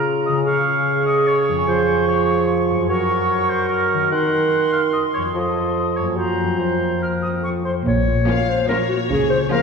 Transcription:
Already playing: C#3 C#4 F4 C#5 F5 A#5
0.26 C#3 D#5
0.33 C#4
0.37 G#4
0.42 C#5 C#6
0.46 G#4 F5
1.06 D#5
1.27 C#5
1.49 F2
1.53 C#4
1.58 G#4
1.62 C#5
1.68 F3 C5
2.08 C#5
2.71 F#2
2.75 C#4
2.80 F#4
2.84 A#4
2.88 F#3 A#4 C#5 C#6
3.49 C5
3.68 A#4
3.94 D#3
3.98 C4
4.03 F#4
4.07 A#4 F#5
4.12 D#3 C6
4.72 F5
4.93 D#5
5.14 F2 C#5
5.21 C4
5.26 F4
5.30 A4
5.35 F3 A4 D#5
5.97 F#2 C#5
6.03 A#3
6.08 F4
6.12 A#4
6.17 F#3 F4 C5 A#5
6.41 F2
6.46 C4
6.50 F4
6.54 A#4
6.59 F3 C5
7.02 A#4 F6
7.22 F2 D#6
7.31 C4
7.35 F4
7.40 A4
7.44 C#6
7.65 C5 C6
7.86 A#1 A#2 C#5
8.07 F4
8.28 F3 A#3 C#4 F4 F5
8.49 F4 C5
8.68 F3 A#3 C#4 F4 A#4 C#5
8.89 F4 F#4
9.10 C#2 C#3 G#4
9.30 F4 C5
9.51 F3 A#3 C#4 F4 A#4 F5

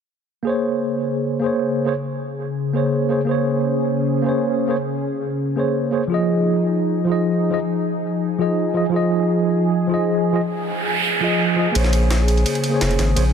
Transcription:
0.43 A#3 G#4
0.47 C#3 C5 C#5
1.40 A#3 G#4
1.44 C5 C#5
1.85 A#3 G#4 C5 C#5
2.73 A#3 G#4 C5 C#5
3.09 A#3 G#4 C5 C#5
3.25 A#3 C#4 G#4
3.29 C5 C#5
4.22 A#3 G#4
4.26 C5 C#5
4.67 A#3 G#4 C5 C#5
5.56 A#3 G#4 C5 C#5
5.91 A#3 G#4 C5 C#5
6.07 F3 D#4 F4 G#4
6.12 G#4 D#5
7.05 F3 F4
7.09 G#4 D#5
7.50 F3 F4 G#4 D#5
8.39 F3 F4 G#4 D#5
8.74 F3 F4 G#4 D#5
8.89 F3 F4
8.94 G#4 D#5
9.87 F3 F4
9.91 G#4 D#5
10.32 F3 F4 G#4 D#5, noise sweep
11.21 F3 F4 G#4 D#5
11.56 F3 F4 G#4 D#5
11.72 A#1 C#3 A#3 G#4, closed hi-hat, ride
11.76 C5 C#5
11.84 snare
11.93 closed hi-hat, ride
12.11 snare, closed hi-hat, ride
12.28 closed hi-hat, ride
12.37 closed hi-hat
12.46 closed hi-hat, ride
12.55 ride
12.64 closed hi-hat, ride
12.69 A#3 G#4
12.74 C5 C#5
12.81 F1, snare, closed hi-hat, ride
12.91 ride
12.99 G#1, snare, closed hi-hat, ride
13.15 A#1 A#3 G#4 C5 C#5, closed hi-hat, ride

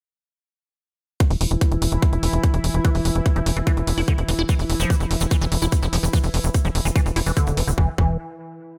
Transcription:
1.20 E3 E4, kick, closed hi-hat
1.30 E1, open hi-hat
1.41 E1, open hi-hat
1.51 E1, closed hi-hat
1.61 kick, closed hi-hat
1.72 E1, closed hi-hat
1.82 E1, open hi-hat
1.92 E1, closed hi-hat
2.02 kick, closed hi-hat
2.13 E1, closed hi-hat
2.23 E1, open hi-hat
2.33 E1, closed hi-hat
2.44 kick, closed hi-hat
2.54 E1, closed hi-hat
2.64 E1, open hi-hat
2.74 E1, closed hi-hat
2.85 E3, kick, closed hi-hat
2.95 E1, open hi-hat
3.05 E1, open hi-hat
3.15 E1, closed hi-hat
3.26 kick, closed hi-hat
3.36 E1 F3, closed hi-hat
3.46 E1, open hi-hat
3.57 E1 E3, closed hi-hat
3.67 E3, kick, closed hi-hat
3.77 E1, closed hi-hat
3.87 E1, open hi-hat
3.98 E1 E4, open hi-hat
4.08 D3, kick, closed hi-hat
4.18 E1, closed hi-hat
4.28 E1 E3, open hi-hat
4.39 E1 E4, closed hi-hat
4.49 E3, kick, closed hi-hat, shaker
4.59 E1, open hi-hat, shaker
4.70 E1, open hi-hat
4.80 E1 F3, closed hi-hat, shaker
4.90 E3, kick, closed hi-hat, shaker
5.00 E1, closed hi-hat, shaker
5.11 E1, open hi-hat
5.20 E1 E3, closed hi-hat, shaker
5.31 E3, kick, closed hi-hat, shaker
5.41 E1 E3, closed hi-hat, shaker
5.52 E1, open hi-hat
5.62 E1 E4, shaker
5.72 kick, closed hi-hat, shaker
5.82 E1 F3, closed hi-hat, shaker
5.93 E1 F3, open hi-hat
6.03 E1 E3, shaker
6.13 E3, kick, closed hi-hat, shaker
6.23 E1, open hi-hat, shaker
6.34 E1, open hi-hat
6.44 E1, closed hi-hat, shaker
6.54 kick, closed hi-hat, shaker
6.65 E1 F3, closed hi-hat, shaker
6.75 E1, open hi-hat
6.85 E1 E3, closed hi-hat, shaker
6.96 E3, kick, closed hi-hat, shaker
7.06 E1, closed hi-hat, shaker
7.16 E1 E4, open hi-hat
7.26 E1 E3, open hi-hat, shaker
7.37 D3, kick, closed hi-hat, shaker
7.47 E1, closed hi-hat, shaker
7.57 E1 F3, open hi-hat
7.68 D1 D3, shaker
7.78 E1 E3, kick
7.98 E1 E3, kick

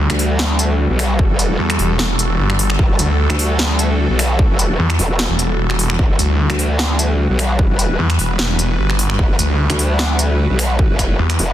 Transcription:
Already playing: E3 G3 F#4 A4
0.10 D2, finger snap, closed hi-hat
0.19 open hi-hat
0.39 snare
0.59 closed hi-hat
0.90 B1
0.99 finger snap, open hi-hat
1.19 kick
1.30 E1
1.39 closed hi-hat
1.59 E2
1.70 finger snap, closed hi-hat
1.79 E1, open hi-hat
1.99 snare
2.19 closed hi-hat
2.39 G1
2.50 finger snap
2.59 open hi-hat
2.70 finger snap
2.79 E1, kick
2.99 D2, closed hi-hat
3.30 D2, finger snap, closed hi-hat
3.39 open hi-hat
3.59 snare
3.79 closed hi-hat
4.10 B1
4.19 finger snap, open hi-hat
4.39 kick
4.50 E1
4.59 closed hi-hat
4.79 E2
4.90 finger snap, closed hi-hat
4.99 E1, open hi-hat
5.19 snare
5.30 E1
5.39 closed hi-hat
5.70 finger snap
5.79 open hi-hat
5.90 finger snap
5.99 E1 B4, kick
6.19 D2, closed hi-hat
6.50 D2, finger snap, closed hi-hat
6.59 open hi-hat
6.79 snare
6.99 closed hi-hat
7.30 B1
7.39 finger snap, open hi-hat
7.59 kick
7.70 E1
7.79 closed hi-hat
7.99 E2
8.10 finger snap, closed hi-hat
8.19 E1, open hi-hat
8.39 snare
8.59 closed hi-hat
8.79 G1
8.90 finger snap
8.99 open hi-hat
9.10 finger snap
9.19 E1, kick
9.39 D2, closed hi-hat
9.70 D2, finger snap, closed hi-hat
9.79 open hi-hat
9.99 snare
10.19 closed hi-hat
10.50 B1
10.59 finger snap, open hi-hat
10.79 kick
10.90 E1
10.99 finger snap, kick, closed hi-hat
11.19 E2
11.30 finger snap, closed hi-hat
11.39 E1, open hi-hat

